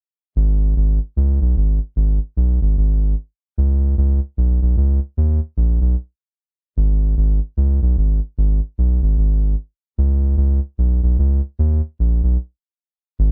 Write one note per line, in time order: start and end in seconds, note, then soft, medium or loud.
0.36 0.74 G#1 loud
0.76 0.99 G#1 medium
1.17 1.39 C#2 medium
1.41 1.56 B1 medium
1.57 1.79 G#1 medium
1.96 2.19 G#1 medium
2.37 2.60 B1 medium
2.62 2.76 G#1 medium
2.77 3.15 G#1 medium
3.58 3.95 C#2 loud
3.98 4.20 C#2 loud
4.37 4.60 B1 medium
4.62 4.76 B1 medium
4.77 5.00 C#2 loud
5.17 5.40 D#2 loud
5.57 5.80 A#1 medium
5.81 5.96 B1 medium
6.77 7.15 G#1 loud
7.17 7.40 G#1 loud
7.57 7.80 C#2 medium
7.82 7.96 B1 medium
7.97 8.20 G#1 medium
8.38 8.60 G#1 loud
8.78 9.01 B1 medium
9.02 9.17 G#1 medium
9.17 9.55 G#1 medium
9.98 10.36 C#2 loud
10.37 10.60 C#2 loud
10.78 11.01 B1 medium
11.03 11.17 B1 medium
11.19 11.41 C#2 loud
11.59 11.81 D#2 loud
11.99 12.21 A#1 medium
12.23 12.37 B1 medium
13.19 13.32 G#1 loud